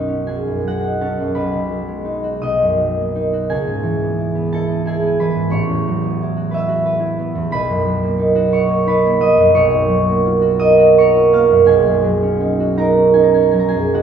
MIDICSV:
0, 0, Header, 1, 2, 480
1, 0, Start_track
1, 0, Tempo, 724638
1, 900, Time_signature, 6, 3, 24, 8
1, 900, Tempo, 701754
1, 2820, Tempo, 668151
1, 4740, Tempo, 684932
1, 7620, Tempo, 716846
1, 8580, Tempo, 782269
1, 9587, End_track
2, 0, Start_track
2, 0, Title_t, "Harp"
2, 0, Program_c, 0, 46
2, 0, Note_on_c, 0, 35, 64
2, 0, Note_on_c, 0, 42, 49
2, 0, Note_on_c, 0, 54, 49
2, 0, Note_on_c, 0, 63, 48
2, 0, Note_on_c, 0, 66, 60
2, 0, Note_on_c, 0, 71, 56
2, 0, Note_on_c, 0, 73, 55
2, 0, Note_on_c, 0, 78, 81
2, 54, Note_on_c, 0, 61, 52
2, 107, Note_off_c, 0, 73, 0
2, 178, Note_off_c, 0, 54, 0
2, 178, Note_on_c, 0, 80, 83
2, 186, Note_on_c, 0, 54, 49
2, 190, Note_on_c, 0, 68, 64
2, 308, Note_off_c, 0, 42, 0
2, 316, Note_on_c, 0, 42, 44
2, 356, Note_off_c, 0, 71, 0
2, 436, Note_off_c, 0, 54, 0
2, 439, Note_off_c, 0, 78, 0
2, 444, Note_off_c, 0, 66, 0
2, 444, Note_on_c, 0, 54, 49
2, 447, Note_on_c, 0, 78, 84
2, 452, Note_on_c, 0, 66, 61
2, 550, Note_off_c, 0, 63, 0
2, 558, Note_on_c, 0, 63, 49
2, 591, Note_off_c, 0, 80, 0
2, 666, Note_off_c, 0, 61, 0
2, 671, Note_on_c, 0, 81, 86
2, 673, Note_on_c, 0, 61, 60
2, 677, Note_on_c, 0, 69, 68
2, 779, Note_off_c, 0, 42, 0
2, 787, Note_on_c, 0, 42, 51
2, 886, Note_off_c, 0, 35, 0
2, 893, Note_on_c, 0, 35, 67
2, 893, Note_on_c, 0, 83, 82
2, 898, Note_on_c, 0, 71, 63
2, 922, Note_off_c, 0, 42, 0
2, 924, Note_off_c, 0, 61, 0
2, 925, Note_off_c, 0, 69, 0
2, 1023, Note_on_c, 0, 47, 50
2, 1072, Note_off_c, 0, 81, 0
2, 1122, Note_off_c, 0, 54, 0
2, 1131, Note_on_c, 0, 54, 56
2, 1257, Note_on_c, 0, 56, 49
2, 1364, Note_off_c, 0, 63, 0
2, 1372, Note_on_c, 0, 63, 51
2, 1491, Note_off_c, 0, 66, 0
2, 1499, Note_on_c, 0, 66, 51
2, 1622, Note_off_c, 0, 35, 0
2, 1623, Note_on_c, 0, 87, 100
2, 1631, Note_on_c, 0, 35, 67
2, 1634, Note_on_c, 0, 75, 82
2, 1641, Note_off_c, 0, 56, 0
2, 1644, Note_off_c, 0, 47, 0
2, 1645, Note_off_c, 0, 68, 0
2, 1764, Note_on_c, 0, 42, 52
2, 1864, Note_off_c, 0, 54, 0
2, 1872, Note_on_c, 0, 54, 52
2, 1995, Note_on_c, 0, 58, 46
2, 2120, Note_off_c, 0, 63, 0
2, 2128, Note_on_c, 0, 63, 59
2, 2241, Note_off_c, 0, 66, 0
2, 2249, Note_on_c, 0, 66, 62
2, 2363, Note_off_c, 0, 87, 0
2, 2363, Note_on_c, 0, 80, 103
2, 2365, Note_off_c, 0, 54, 0
2, 2366, Note_off_c, 0, 58, 0
2, 2366, Note_on_c, 0, 37, 71
2, 2367, Note_off_c, 0, 35, 0
2, 2369, Note_off_c, 0, 75, 0
2, 2372, Note_off_c, 0, 42, 0
2, 2373, Note_off_c, 0, 63, 0
2, 2373, Note_off_c, 0, 78, 0
2, 2374, Note_off_c, 0, 66, 0
2, 2374, Note_on_c, 0, 68, 78
2, 2482, Note_on_c, 0, 44, 53
2, 2590, Note_on_c, 0, 52, 65
2, 2727, Note_on_c, 0, 59, 53
2, 2836, Note_on_c, 0, 64, 49
2, 2944, Note_off_c, 0, 59, 0
2, 2952, Note_on_c, 0, 59, 61
2, 3078, Note_off_c, 0, 64, 0
2, 3079, Note_on_c, 0, 81, 95
2, 3087, Note_on_c, 0, 64, 64
2, 3090, Note_on_c, 0, 69, 79
2, 3183, Note_off_c, 0, 59, 0
2, 3191, Note_on_c, 0, 59, 54
2, 3306, Note_off_c, 0, 64, 0
2, 3315, Note_on_c, 0, 64, 60
2, 3318, Note_off_c, 0, 80, 0
2, 3325, Note_off_c, 0, 68, 0
2, 3327, Note_on_c, 0, 80, 95
2, 3333, Note_on_c, 0, 68, 74
2, 3426, Note_off_c, 0, 59, 0
2, 3435, Note_on_c, 0, 59, 60
2, 3481, Note_off_c, 0, 81, 0
2, 3552, Note_off_c, 0, 83, 0
2, 3555, Note_off_c, 0, 52, 0
2, 3562, Note_on_c, 0, 52, 65
2, 3562, Note_on_c, 0, 83, 115
2, 3564, Note_off_c, 0, 71, 0
2, 3573, Note_on_c, 0, 71, 77
2, 3664, Note_off_c, 0, 44, 0
2, 3672, Note_on_c, 0, 44, 61
2, 3779, Note_on_c, 0, 33, 77
2, 3788, Note_on_c, 0, 85, 112
2, 3796, Note_on_c, 0, 73, 88
2, 3810, Note_off_c, 0, 44, 0
2, 3815, Note_off_c, 0, 52, 0
2, 3817, Note_off_c, 0, 80, 0
2, 3819, Note_off_c, 0, 37, 0
2, 3820, Note_off_c, 0, 68, 0
2, 3915, Note_on_c, 0, 40, 55
2, 4049, Note_on_c, 0, 54, 60
2, 4152, Note_off_c, 0, 59, 0
2, 4160, Note_on_c, 0, 59, 61
2, 4289, Note_off_c, 0, 64, 0
2, 4297, Note_on_c, 0, 64, 61
2, 4401, Note_on_c, 0, 66, 60
2, 4501, Note_off_c, 0, 71, 0
2, 4504, Note_on_c, 0, 71, 72
2, 4526, Note_on_c, 0, 76, 95
2, 4547, Note_on_c, 0, 88, 113
2, 4620, Note_off_c, 0, 66, 0
2, 4628, Note_on_c, 0, 66, 63
2, 4743, Note_off_c, 0, 71, 0
2, 4751, Note_on_c, 0, 71, 70
2, 4843, Note_off_c, 0, 64, 0
2, 4851, Note_on_c, 0, 64, 67
2, 4980, Note_off_c, 0, 59, 0
2, 4988, Note_on_c, 0, 59, 66
2, 5091, Note_off_c, 0, 40, 0
2, 5099, Note_on_c, 0, 40, 61
2, 5208, Note_off_c, 0, 83, 0
2, 5213, Note_on_c, 0, 35, 83
2, 5218, Note_on_c, 0, 83, 124
2, 5222, Note_off_c, 0, 71, 0
2, 5230, Note_on_c, 0, 71, 94
2, 5235, Note_off_c, 0, 33, 0
2, 5236, Note_off_c, 0, 64, 0
2, 5239, Note_off_c, 0, 85, 0
2, 5240, Note_off_c, 0, 40, 0
2, 5243, Note_off_c, 0, 73, 0
2, 5251, Note_off_c, 0, 69, 0
2, 5252, Note_off_c, 0, 76, 0
2, 5252, Note_off_c, 0, 88, 0
2, 5340, Note_on_c, 0, 42, 63
2, 5452, Note_off_c, 0, 54, 0
2, 5461, Note_on_c, 0, 54, 65
2, 5575, Note_on_c, 0, 58, 64
2, 5684, Note_on_c, 0, 63, 69
2, 5793, Note_off_c, 0, 66, 0
2, 5802, Note_on_c, 0, 66, 77
2, 5912, Note_off_c, 0, 63, 0
2, 5918, Note_on_c, 0, 63, 74
2, 5924, Note_on_c, 0, 85, 117
2, 5929, Note_on_c, 0, 73, 83
2, 6028, Note_off_c, 0, 58, 0
2, 6036, Note_on_c, 0, 58, 63
2, 6157, Note_off_c, 0, 63, 0
2, 6157, Note_off_c, 0, 83, 0
2, 6160, Note_off_c, 0, 71, 0
2, 6162, Note_on_c, 0, 63, 71
2, 6168, Note_on_c, 0, 71, 86
2, 6168, Note_on_c, 0, 83, 113
2, 6284, Note_off_c, 0, 58, 0
2, 6293, Note_on_c, 0, 58, 65
2, 6332, Note_off_c, 0, 85, 0
2, 6391, Note_off_c, 0, 54, 0
2, 6398, Note_on_c, 0, 54, 74
2, 6402, Note_on_c, 0, 87, 119
2, 6412, Note_on_c, 0, 75, 101
2, 6509, Note_off_c, 0, 42, 0
2, 6517, Note_on_c, 0, 42, 69
2, 6630, Note_off_c, 0, 35, 0
2, 6637, Note_on_c, 0, 35, 89
2, 6639, Note_on_c, 0, 85, 121
2, 6641, Note_off_c, 0, 73, 0
2, 6649, Note_on_c, 0, 73, 93
2, 6662, Note_off_c, 0, 42, 0
2, 6663, Note_off_c, 0, 87, 0
2, 6666, Note_off_c, 0, 63, 0
2, 6666, Note_off_c, 0, 83, 0
2, 6667, Note_off_c, 0, 71, 0
2, 6669, Note_off_c, 0, 75, 0
2, 6672, Note_off_c, 0, 59, 0
2, 6756, Note_on_c, 0, 42, 64
2, 6867, Note_off_c, 0, 54, 0
2, 6876, Note_on_c, 0, 54, 66
2, 7008, Note_off_c, 0, 58, 0
2, 7017, Note_on_c, 0, 58, 68
2, 7136, Note_on_c, 0, 65, 61
2, 7239, Note_off_c, 0, 66, 0
2, 7247, Note_on_c, 0, 66, 73
2, 7370, Note_on_c, 0, 70, 75
2, 7373, Note_on_c, 0, 87, 125
2, 7385, Note_on_c, 0, 75, 97
2, 7498, Note_off_c, 0, 66, 0
2, 7506, Note_on_c, 0, 66, 69
2, 7631, Note_off_c, 0, 70, 0
2, 7636, Note_off_c, 0, 85, 0
2, 7639, Note_on_c, 0, 70, 78
2, 7644, Note_on_c, 0, 85, 115
2, 7649, Note_off_c, 0, 73, 0
2, 7657, Note_on_c, 0, 73, 83
2, 7746, Note_off_c, 0, 65, 0
2, 7754, Note_on_c, 0, 65, 65
2, 7782, Note_off_c, 0, 87, 0
2, 7868, Note_off_c, 0, 58, 0
2, 7873, Note_on_c, 0, 58, 71
2, 7880, Note_on_c, 0, 77, 99
2, 7881, Note_on_c, 0, 89, 125
2, 7983, Note_off_c, 0, 42, 0
2, 7991, Note_on_c, 0, 42, 68
2, 8089, Note_off_c, 0, 35, 0
2, 8096, Note_on_c, 0, 35, 87
2, 8100, Note_on_c, 0, 80, 115
2, 8111, Note_on_c, 0, 68, 95
2, 8120, Note_off_c, 0, 65, 0
2, 8121, Note_off_c, 0, 42, 0
2, 8121, Note_off_c, 0, 70, 0
2, 8122, Note_off_c, 0, 58, 0
2, 8123, Note_off_c, 0, 89, 0
2, 8124, Note_off_c, 0, 77, 0
2, 8228, Note_on_c, 0, 42, 63
2, 8341, Note_off_c, 0, 54, 0
2, 8349, Note_on_c, 0, 54, 72
2, 8476, Note_on_c, 0, 61, 60
2, 8592, Note_on_c, 0, 63, 56
2, 8704, Note_off_c, 0, 66, 0
2, 8711, Note_on_c, 0, 66, 63
2, 8813, Note_off_c, 0, 63, 0
2, 8819, Note_on_c, 0, 63, 68
2, 8823, Note_on_c, 0, 82, 99
2, 8835, Note_on_c, 0, 70, 81
2, 8933, Note_off_c, 0, 61, 0
2, 8940, Note_on_c, 0, 61, 63
2, 9036, Note_off_c, 0, 80, 0
2, 9040, Note_off_c, 0, 63, 0
2, 9043, Note_on_c, 0, 80, 85
2, 9047, Note_on_c, 0, 63, 66
2, 9096, Note_off_c, 0, 82, 0
2, 9104, Note_on_c, 0, 82, 84
2, 9140, Note_off_c, 0, 80, 0
2, 9168, Note_off_c, 0, 61, 0
2, 9168, Note_on_c, 0, 80, 84
2, 9176, Note_on_c, 0, 61, 58
2, 9198, Note_off_c, 0, 82, 0
2, 9216, Note_on_c, 0, 82, 75
2, 9258, Note_off_c, 0, 80, 0
2, 9273, Note_on_c, 0, 80, 78
2, 9279, Note_off_c, 0, 54, 0
2, 9287, Note_on_c, 0, 54, 66
2, 9310, Note_off_c, 0, 82, 0
2, 9323, Note_on_c, 0, 82, 86
2, 9367, Note_off_c, 0, 80, 0
2, 9380, Note_on_c, 0, 80, 106
2, 9383, Note_off_c, 0, 68, 0
2, 9390, Note_on_c, 0, 68, 79
2, 9407, Note_off_c, 0, 42, 0
2, 9414, Note_on_c, 0, 42, 55
2, 9421, Note_off_c, 0, 82, 0
2, 9528, Note_off_c, 0, 35, 0
2, 9534, Note_on_c, 0, 35, 74
2, 9536, Note_off_c, 0, 66, 0
2, 9539, Note_on_c, 0, 78, 91
2, 9543, Note_on_c, 0, 66, 73
2, 9557, Note_off_c, 0, 80, 0
2, 9559, Note_off_c, 0, 42, 0
2, 9562, Note_off_c, 0, 61, 0
2, 9562, Note_off_c, 0, 68, 0
2, 9569, Note_off_c, 0, 85, 0
2, 9575, Note_off_c, 0, 73, 0
2, 9587, Note_off_c, 0, 35, 0
2, 9587, Note_off_c, 0, 54, 0
2, 9587, Note_off_c, 0, 63, 0
2, 9587, Note_off_c, 0, 66, 0
2, 9587, Note_off_c, 0, 70, 0
2, 9587, Note_off_c, 0, 75, 0
2, 9587, Note_off_c, 0, 78, 0
2, 9587, End_track
0, 0, End_of_file